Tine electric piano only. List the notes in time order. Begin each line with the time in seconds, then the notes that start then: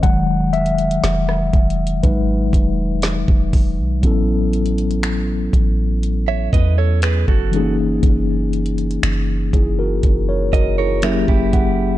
0.03 D#3 F#3 G#3 F#5
0.53 E5
2.03 F#3 G#3 D#4 B4
4.02 F#3 B3 C#4 E4
4.07 A4
7.52 E3 G#3 C#4 D#4
7.56 A#3 G#4
9.54 E4 G#4
9.79 F#4 A#4
10.29 A#4 C#5
10.54 F#4 A#4
10.79 E4 G#4
11.03 F#3 A#3 C#4 E4 G4 E5
11.54 F#5